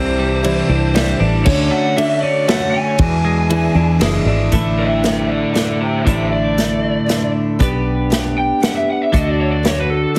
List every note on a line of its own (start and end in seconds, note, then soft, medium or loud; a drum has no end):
0.00 0.61 C2 medium
0.00 0.43 C3 medium
0.00 0.42 E3 medium
0.00 0.42 G3 medium
0.00 0.44 D4 medium
0.00 0.31 E4 medium
0.00 0.43 E4 medium
0.00 0.30 G4 medium
0.00 0.31 C5 medium
0.00 1.17 C5 medium
0.00 0.31 D5 medium
0.19 0.94 G3 medium
0.43 0.93 E3 medium
0.43 0.93 G3 medium
0.43 0.94 D4 medium
0.43 0.82 E4 medium
0.43 0.94 E4 medium
0.43 0.82 G4 medium
0.43 0.82 C5 medium
0.43 0.82 D5 medium
0.43 ride medium
0.69 1.14 C2 medium
0.69 1.20 D4 medium
0.94 1.45 E3 medium
0.94 1.46 G3 medium
0.94 1.46 D4 medium
0.94 1.33 E4 medium
0.94 1.46 E4 medium
0.94 1.33 G4 medium
0.94 1.33 C5 medium
0.94 1.33 D5 medium
0.94 snare medium
0.94 ride medium
1.20 1.43 A1 medium
1.20 2.23 D4 medium
1.45 1.69 D2 loud
1.45 1.95 D3 medium
1.45 1.96 A3 medium
1.45 1.96 C#4 medium
1.45 1.85 D4 medium
1.45 1.84 F#4 medium
1.45 1.97 F#4 medium
1.45 1.84 A4 medium
1.45 1.84 C#5 medium
1.45 1.72 C#5 medium
1.45 kick loud
1.45 crash loud
1.71 2.47 A3 medium
1.71 1.95 F#5 medium
1.96 2.46 D3 medium
1.96 2.48 A3 medium
1.96 2.48 C#4 medium
1.96 2.36 D4 medium
1.96 2.36 F#4 medium
1.96 2.48 F#4 medium
1.96 2.36 A4 medium
1.96 2.36 C#5 medium
1.96 2.21 E5 loud
1.96 ride medium
2.21 2.73 C#4 medium
2.21 2.48 D5 medium
2.47 2.98 D3 medium
2.47 2.99 A3 medium
2.47 2.98 C#4 medium
2.47 2.86 F#4 medium
2.47 2.99 F#4 medium
2.47 2.86 A4 medium
2.47 2.87 C#5 medium
2.47 2.71 F#5 medium
2.47 2.87 F#5 medium
2.47 snare medium
2.47 ride medium
2.71 3.00 C#4 medium
2.71 3.96 G#5 loud
2.98 3.50 E2 medium
2.98 3.67 E2 loud
2.98 3.50 B2 medium
2.98 3.48 E3 medium
2.98 3.49 G#3 medium
2.98 3.49 D4 medium
2.98 3.50 E4 medium
2.98 3.38 E4 medium
2.98 3.38 G#4 medium
2.98 3.38 B4 medium
2.98 3.39 D5 medium
2.98 kick loud
2.98 ride medium
3.25 4.00 G#3 medium
3.50 3.76 E3 medium
3.50 3.75 G#3 medium
3.50 3.75 D4 medium
3.50 3.89 E4 medium
3.50 3.73 E4 medium
3.50 3.89 G#4 medium
3.50 3.89 B4 medium
3.50 3.90 D5 medium
3.50 ride medium
3.74 3.98 E2 medium
3.74 3.98 E3 soft
3.74 3.99 G#3 soft
3.74 4.00 D4 soft
3.74 4.00 E4 medium
3.99 4.24 F#1 medium
3.99 4.52 E3 medium
3.99 4.52 G#3 medium
3.99 4.52 D4 medium
3.99 4.40 E4 medium
3.99 4.53 E4 medium
3.99 4.40 G#4 medium
3.99 4.40 B4 medium
3.99 4.40 D5 medium
3.99 snare medium
3.99 ride medium
4.25 4.49 G#1 medium
4.25 4.53 D4 medium
4.52 5.44 A1 medium
4.52 5.04 A2 medium
4.52 5.01 D3 medium
4.52 5.02 A3 medium
4.52 5.04 D4 medium
4.52 5.04 E4 medium
4.52 kick loud
4.52 closed hi-hat medium
4.79 5.02 C5 medium
4.79 5.03 E5 medium
5.03 5.53 D3 medium
5.03 5.53 A3 medium
5.03 5.55 D4 medium
5.03 5.55 E4 medium
5.03 5.28 C5 medium
5.03 5.29 E5 medium
5.03 snare medium
5.03 closed hi-hat medium
5.27 5.52 A4 medium
5.27 5.52 D5 medium
5.54 6.06 D3 medium
5.54 6.06 A3 medium
5.54 6.07 D4 medium
5.54 6.06 E4 medium
5.54 5.78 A4 medium
5.54 5.79 D5 medium
5.54 snare medium
5.54 closed hi-hat medium
5.81 6.03 G4 medium
5.81 6.05 C5 medium
6.04 6.98 A1 medium
6.04 6.58 A2 medium
6.04 6.56 D3 medium
6.04 6.56 A3 medium
6.04 6.58 D4 medium
6.04 6.58 E4 medium
6.04 6.29 G4 medium
6.04 6.31 C5 medium
6.04 kick loud
6.04 closed hi-hat medium
6.32 7.31 D5 medium
6.57 7.05 D3 medium
6.57 7.07 A3 medium
6.57 7.08 D4 medium
6.57 7.07 E4 medium
6.57 snare medium
6.57 closed hi-hat medium
7.06 7.59 D3 medium
7.06 7.59 A3 medium
7.06 7.59 D4 medium
7.06 7.60 E4 medium
7.06 snare medium
7.06 closed hi-hat medium
7.59 8.51 B1 medium
7.59 8.09 B3 medium
7.59 8.10 D4 medium
7.59 8.10 G4 medium
7.59 8.11 B4 medium
7.59 kick loud
7.59 closed hi-hat medium
8.10 8.59 B3 medium
8.10 8.61 D4 medium
8.10 8.61 G4 medium
8.10 8.61 B4 medium
8.10 snare medium
8.10 closed hi-hat medium
8.38 8.62 G5 medium
8.60 9.12 B3 medium
8.60 9.12 D4 medium
8.60 9.13 G4 medium
8.60 9.13 B4 medium
8.60 8.75 F#5 medium
8.60 snare medium
8.60 closed hi-hat medium
8.76 8.88 E5 medium
8.90 9.02 F#5 medium
9.01 9.14 E5 medium
9.13 10.04 D2 medium
9.13 9.62 D3 medium
9.13 9.64 D4 medium
9.13 9.64 F#4 medium
9.13 9.66 A4 medium
9.13 9.29 D#5 medium
9.13 kick loud
9.13 closed hi-hat medium
9.29 9.40 D5 medium
9.41 9.51 C#5 medium
9.51 9.64 D5 medium
9.63 10.13 D3 medium
9.63 10.15 D4 medium
9.63 10.14 F#4 medium
9.63 10.15 A4 medium
9.63 9.78 C#5 medium
9.63 snare medium
9.63 closed hi-hat medium
9.80 9.90 B4 medium
9.90 10.19 A4 medium
10.14 10.19 D3 medium
10.14 10.19 D4 medium
10.14 10.19 F#4 medium
10.14 10.19 A4 medium